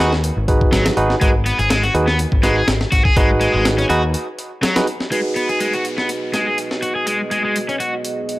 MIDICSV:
0, 0, Header, 1, 7, 480
1, 0, Start_track
1, 0, Key_signature, 5, "minor"
1, 0, Tempo, 487805
1, 1196, Time_signature, 4, 2, 24, 8
1, 8257, End_track
2, 0, Start_track
2, 0, Title_t, "Analog synth pad"
2, 0, Program_c, 0, 89
2, 5034, Note_on_c, 0, 66, 70
2, 5034, Note_on_c, 0, 68, 72
2, 5035, Note_on_c, 0, 59, 77
2, 5035, Note_on_c, 0, 75, 90
2, 8257, Note_off_c, 0, 59, 0
2, 8257, Note_off_c, 0, 66, 0
2, 8257, Note_off_c, 0, 68, 0
2, 8257, Note_off_c, 0, 75, 0
2, 8257, End_track
3, 0, Start_track
3, 0, Title_t, "Tine electric piano"
3, 0, Program_c, 1, 4
3, 0, Note_on_c, 1, 63, 87
3, 0, Note_on_c, 1, 66, 81
3, 0, Note_on_c, 1, 68, 82
3, 0, Note_on_c, 1, 71, 96
3, 106, Note_off_c, 1, 68, 0
3, 107, Note_off_c, 1, 63, 0
3, 107, Note_off_c, 1, 66, 0
3, 107, Note_off_c, 1, 71, 0
3, 474, Note_on_c, 1, 66, 66
3, 474, Note_on_c, 1, 68, 66
3, 475, Note_on_c, 1, 63, 72
3, 475, Note_on_c, 1, 71, 77
3, 928, Note_off_c, 1, 63, 0
3, 928, Note_off_c, 1, 66, 0
3, 928, Note_off_c, 1, 68, 0
3, 929, Note_off_c, 1, 71, 0
3, 954, Note_on_c, 1, 71, 99
3, 955, Note_on_c, 1, 63, 91
3, 955, Note_on_c, 1, 66, 82
3, 955, Note_on_c, 1, 68, 82
3, 1125, Note_off_c, 1, 71, 0
3, 1126, Note_off_c, 1, 63, 0
3, 1126, Note_off_c, 1, 66, 0
3, 1126, Note_off_c, 1, 68, 0
3, 1196, Note_on_c, 1, 66, 69
3, 1196, Note_on_c, 1, 68, 68
3, 1197, Note_on_c, 1, 63, 74
3, 1197, Note_on_c, 1, 71, 84
3, 1307, Note_off_c, 1, 63, 0
3, 1307, Note_off_c, 1, 66, 0
3, 1307, Note_off_c, 1, 68, 0
3, 1307, Note_off_c, 1, 71, 0
3, 1915, Note_on_c, 1, 63, 83
3, 1915, Note_on_c, 1, 66, 76
3, 1915, Note_on_c, 1, 68, 78
3, 1915, Note_on_c, 1, 71, 92
3, 2026, Note_off_c, 1, 63, 0
3, 2026, Note_off_c, 1, 66, 0
3, 2026, Note_off_c, 1, 68, 0
3, 2026, Note_off_c, 1, 71, 0
3, 2396, Note_on_c, 1, 63, 79
3, 2396, Note_on_c, 1, 66, 72
3, 2396, Note_on_c, 1, 68, 73
3, 2397, Note_on_c, 1, 71, 87
3, 2567, Note_off_c, 1, 63, 0
3, 2567, Note_off_c, 1, 66, 0
3, 2567, Note_off_c, 1, 68, 0
3, 2567, Note_off_c, 1, 71, 0
3, 3116, Note_on_c, 1, 63, 83
3, 3116, Note_on_c, 1, 66, 77
3, 3116, Note_on_c, 1, 68, 74
3, 3116, Note_on_c, 1, 71, 91
3, 3809, Note_off_c, 1, 63, 0
3, 3809, Note_off_c, 1, 66, 0
3, 3809, Note_off_c, 1, 68, 0
3, 3809, Note_off_c, 1, 71, 0
3, 3834, Note_on_c, 1, 66, 79
3, 3834, Note_on_c, 1, 71, 98
3, 3835, Note_on_c, 1, 63, 90
3, 3835, Note_on_c, 1, 68, 80
3, 3946, Note_off_c, 1, 63, 0
3, 3946, Note_off_c, 1, 66, 0
3, 3946, Note_off_c, 1, 68, 0
3, 3946, Note_off_c, 1, 71, 0
3, 4684, Note_on_c, 1, 63, 84
3, 4684, Note_on_c, 1, 68, 76
3, 4685, Note_on_c, 1, 66, 75
3, 4685, Note_on_c, 1, 71, 91
3, 4780, Note_off_c, 1, 63, 0
3, 4780, Note_off_c, 1, 66, 0
3, 4780, Note_off_c, 1, 68, 0
3, 4780, Note_off_c, 1, 71, 0
3, 5035, Note_on_c, 1, 68, 64
3, 5036, Note_on_c, 1, 63, 69
3, 5036, Note_on_c, 1, 66, 63
3, 5036, Note_on_c, 1, 71, 78
3, 8257, Note_off_c, 1, 63, 0
3, 8257, Note_off_c, 1, 66, 0
3, 8257, Note_off_c, 1, 68, 0
3, 8257, Note_off_c, 1, 71, 0
3, 8257, End_track
4, 0, Start_track
4, 0, Title_t, "Overdriven electric guitar"
4, 0, Program_c, 2, 29
4, 0, Note_on_c, 2, 66, 74
4, 115, Note_off_c, 2, 66, 0
4, 711, Note_on_c, 2, 54, 83
4, 836, Note_off_c, 2, 54, 0
4, 1192, Note_on_c, 2, 56, 82
4, 1261, Note_off_c, 2, 56, 0
4, 1434, Note_on_c, 2, 59, 74
4, 1546, Note_off_c, 2, 59, 0
4, 1562, Note_on_c, 2, 68, 76
4, 1659, Note_off_c, 2, 68, 0
4, 1671, Note_on_c, 2, 56, 98
4, 1789, Note_off_c, 2, 56, 0
4, 1802, Note_on_c, 2, 66, 75
4, 1899, Note_off_c, 2, 66, 0
4, 2041, Note_on_c, 2, 59, 76
4, 2139, Note_off_c, 2, 59, 0
4, 2392, Note_on_c, 2, 56, 100
4, 2510, Note_off_c, 2, 56, 0
4, 2521, Note_on_c, 2, 68, 76
4, 2619, Note_off_c, 2, 68, 0
4, 2872, Note_on_c, 2, 66, 74
4, 2996, Note_off_c, 2, 66, 0
4, 3000, Note_on_c, 2, 68, 72
4, 3099, Note_off_c, 2, 68, 0
4, 3112, Note_on_c, 2, 56, 83
4, 3236, Note_off_c, 2, 56, 0
4, 3351, Note_on_c, 2, 56, 102
4, 3467, Note_off_c, 2, 56, 0
4, 3479, Note_on_c, 2, 56, 76
4, 3587, Note_off_c, 2, 56, 0
4, 3721, Note_on_c, 2, 61, 78
4, 3780, Note_off_c, 2, 61, 0
4, 3832, Note_on_c, 2, 66, 75
4, 3956, Note_off_c, 2, 66, 0
4, 4553, Note_on_c, 2, 54, 85
4, 4677, Note_off_c, 2, 54, 0
4, 5034, Note_on_c, 2, 56, 75
4, 5102, Note_off_c, 2, 56, 0
4, 5275, Note_on_c, 2, 59, 69
4, 5387, Note_off_c, 2, 59, 0
4, 5403, Note_on_c, 2, 68, 70
4, 5500, Note_off_c, 2, 68, 0
4, 5514, Note_on_c, 2, 56, 88
4, 5631, Note_off_c, 2, 56, 0
4, 5644, Note_on_c, 2, 66, 71
4, 5741, Note_off_c, 2, 66, 0
4, 5885, Note_on_c, 2, 59, 69
4, 5981, Note_off_c, 2, 59, 0
4, 6235, Note_on_c, 2, 56, 94
4, 6351, Note_off_c, 2, 56, 0
4, 6365, Note_on_c, 2, 68, 70
4, 6461, Note_off_c, 2, 68, 0
4, 6716, Note_on_c, 2, 66, 70
4, 6838, Note_off_c, 2, 66, 0
4, 6843, Note_on_c, 2, 68, 67
4, 6940, Note_off_c, 2, 68, 0
4, 6955, Note_on_c, 2, 56, 76
4, 7078, Note_off_c, 2, 56, 0
4, 7195, Note_on_c, 2, 56, 91
4, 7311, Note_off_c, 2, 56, 0
4, 7324, Note_on_c, 2, 56, 69
4, 7430, Note_off_c, 2, 56, 0
4, 7563, Note_on_c, 2, 61, 71
4, 7622, Note_off_c, 2, 61, 0
4, 7674, Note_on_c, 2, 66, 69
4, 7797, Note_off_c, 2, 66, 0
4, 8257, End_track
5, 0, Start_track
5, 0, Title_t, "Picked electric bass"
5, 0, Program_c, 3, 34
5, 0, Note_on_c, 3, 39, 77
5, 295, Note_off_c, 3, 39, 0
5, 362, Note_on_c, 3, 32, 86
5, 654, Note_off_c, 3, 32, 0
5, 716, Note_on_c, 3, 32, 90
5, 880, Note_off_c, 3, 32, 0
5, 955, Note_on_c, 3, 32, 83
5, 1120, Note_off_c, 3, 32, 0
5, 1194, Note_on_c, 3, 32, 93
5, 1494, Note_off_c, 3, 32, 0
5, 1565, Note_on_c, 3, 32, 99
5, 1856, Note_off_c, 3, 32, 0
5, 1913, Note_on_c, 3, 39, 79
5, 2213, Note_off_c, 3, 39, 0
5, 2283, Note_on_c, 3, 32, 90
5, 2574, Note_off_c, 3, 32, 0
5, 2633, Note_on_c, 3, 32, 86
5, 2799, Note_off_c, 3, 32, 0
5, 2874, Note_on_c, 3, 32, 83
5, 3039, Note_off_c, 3, 32, 0
5, 3114, Note_on_c, 3, 32, 90
5, 3414, Note_off_c, 3, 32, 0
5, 3486, Note_on_c, 3, 32, 101
5, 3776, Note_off_c, 3, 32, 0
5, 3835, Note_on_c, 3, 39, 81
5, 4075, Note_off_c, 3, 39, 0
5, 8257, End_track
6, 0, Start_track
6, 0, Title_t, "Downlifter"
6, 0, Program_c, 4, 103
6, 5036, Note_on_c, 4, 60, 66
6, 8257, Note_off_c, 4, 60, 0
6, 8257, End_track
7, 0, Start_track
7, 0, Title_t, "Drums"
7, 124, Note_on_c, 9, 38, 41
7, 223, Note_off_c, 9, 38, 0
7, 234, Note_on_c, 9, 42, 82
7, 333, Note_off_c, 9, 42, 0
7, 474, Note_on_c, 9, 36, 91
7, 475, Note_on_c, 9, 42, 68
7, 573, Note_off_c, 9, 36, 0
7, 573, Note_off_c, 9, 42, 0
7, 603, Note_on_c, 9, 36, 96
7, 702, Note_off_c, 9, 36, 0
7, 715, Note_on_c, 9, 38, 102
7, 715, Note_on_c, 9, 42, 77
7, 813, Note_off_c, 9, 38, 0
7, 813, Note_off_c, 9, 42, 0
7, 843, Note_on_c, 9, 38, 102
7, 843, Note_on_c, 9, 42, 77
7, 942, Note_off_c, 9, 38, 0
7, 942, Note_off_c, 9, 42, 0
7, 955, Note_on_c, 9, 42, 65
7, 1053, Note_off_c, 9, 42, 0
7, 1084, Note_on_c, 9, 38, 36
7, 1183, Note_off_c, 9, 38, 0
7, 1194, Note_on_c, 9, 36, 112
7, 1195, Note_on_c, 9, 42, 85
7, 1293, Note_off_c, 9, 36, 0
7, 1293, Note_off_c, 9, 42, 0
7, 1436, Note_on_c, 9, 42, 69
7, 1535, Note_off_c, 9, 42, 0
7, 1566, Note_on_c, 9, 42, 44
7, 1664, Note_off_c, 9, 42, 0
7, 1676, Note_on_c, 9, 38, 117
7, 1676, Note_on_c, 9, 42, 87
7, 1775, Note_off_c, 9, 38, 0
7, 1775, Note_off_c, 9, 42, 0
7, 1805, Note_on_c, 9, 42, 43
7, 1903, Note_off_c, 9, 42, 0
7, 1916, Note_on_c, 9, 42, 66
7, 2015, Note_off_c, 9, 42, 0
7, 2045, Note_on_c, 9, 38, 41
7, 2143, Note_off_c, 9, 38, 0
7, 2156, Note_on_c, 9, 42, 87
7, 2254, Note_off_c, 9, 42, 0
7, 2283, Note_on_c, 9, 36, 92
7, 2381, Note_off_c, 9, 36, 0
7, 2395, Note_on_c, 9, 38, 47
7, 2395, Note_on_c, 9, 42, 67
7, 2493, Note_off_c, 9, 38, 0
7, 2493, Note_off_c, 9, 42, 0
7, 2634, Note_on_c, 9, 38, 114
7, 2634, Note_on_c, 9, 42, 84
7, 2733, Note_off_c, 9, 38, 0
7, 2733, Note_off_c, 9, 42, 0
7, 2763, Note_on_c, 9, 38, 46
7, 2861, Note_off_c, 9, 38, 0
7, 2874, Note_on_c, 9, 36, 97
7, 2874, Note_on_c, 9, 42, 69
7, 2972, Note_off_c, 9, 36, 0
7, 2972, Note_off_c, 9, 42, 0
7, 3002, Note_on_c, 9, 36, 95
7, 3101, Note_off_c, 9, 36, 0
7, 3114, Note_on_c, 9, 36, 108
7, 3114, Note_on_c, 9, 42, 86
7, 3212, Note_off_c, 9, 36, 0
7, 3212, Note_off_c, 9, 42, 0
7, 3354, Note_on_c, 9, 42, 68
7, 3452, Note_off_c, 9, 42, 0
7, 3595, Note_on_c, 9, 38, 113
7, 3595, Note_on_c, 9, 42, 88
7, 3693, Note_off_c, 9, 38, 0
7, 3693, Note_off_c, 9, 42, 0
7, 3724, Note_on_c, 9, 42, 43
7, 3822, Note_off_c, 9, 42, 0
7, 3836, Note_on_c, 9, 42, 68
7, 3934, Note_off_c, 9, 42, 0
7, 4074, Note_on_c, 9, 42, 85
7, 4173, Note_off_c, 9, 42, 0
7, 4315, Note_on_c, 9, 42, 67
7, 4414, Note_off_c, 9, 42, 0
7, 4557, Note_on_c, 9, 38, 102
7, 4557, Note_on_c, 9, 42, 79
7, 4655, Note_off_c, 9, 38, 0
7, 4655, Note_off_c, 9, 42, 0
7, 4684, Note_on_c, 9, 38, 104
7, 4684, Note_on_c, 9, 42, 78
7, 4783, Note_off_c, 9, 38, 0
7, 4783, Note_off_c, 9, 42, 0
7, 4796, Note_on_c, 9, 42, 68
7, 4894, Note_off_c, 9, 42, 0
7, 4925, Note_on_c, 9, 38, 38
7, 5023, Note_off_c, 9, 38, 0
7, 5036, Note_on_c, 9, 42, 83
7, 5134, Note_off_c, 9, 42, 0
7, 5275, Note_on_c, 9, 42, 64
7, 5374, Note_off_c, 9, 42, 0
7, 5405, Note_on_c, 9, 42, 41
7, 5503, Note_off_c, 9, 42, 0
7, 5515, Note_on_c, 9, 42, 83
7, 5613, Note_off_c, 9, 42, 0
7, 5643, Note_on_c, 9, 42, 40
7, 5741, Note_off_c, 9, 42, 0
7, 5754, Note_on_c, 9, 42, 62
7, 5852, Note_off_c, 9, 42, 0
7, 5883, Note_on_c, 9, 38, 38
7, 5981, Note_off_c, 9, 38, 0
7, 5993, Note_on_c, 9, 42, 77
7, 6092, Note_off_c, 9, 42, 0
7, 6234, Note_on_c, 9, 38, 45
7, 6234, Note_on_c, 9, 42, 63
7, 6333, Note_off_c, 9, 38, 0
7, 6333, Note_off_c, 9, 42, 0
7, 6475, Note_on_c, 9, 42, 78
7, 6573, Note_off_c, 9, 42, 0
7, 6603, Note_on_c, 9, 38, 42
7, 6702, Note_off_c, 9, 38, 0
7, 6716, Note_on_c, 9, 42, 62
7, 6815, Note_off_c, 9, 42, 0
7, 6955, Note_on_c, 9, 42, 82
7, 7054, Note_off_c, 9, 42, 0
7, 7196, Note_on_c, 9, 42, 65
7, 7295, Note_off_c, 9, 42, 0
7, 7437, Note_on_c, 9, 42, 83
7, 7535, Note_off_c, 9, 42, 0
7, 7567, Note_on_c, 9, 42, 41
7, 7665, Note_off_c, 9, 42, 0
7, 7677, Note_on_c, 9, 42, 62
7, 7776, Note_off_c, 9, 42, 0
7, 7917, Note_on_c, 9, 42, 80
7, 8015, Note_off_c, 9, 42, 0
7, 8156, Note_on_c, 9, 42, 63
7, 8254, Note_off_c, 9, 42, 0
7, 8257, End_track
0, 0, End_of_file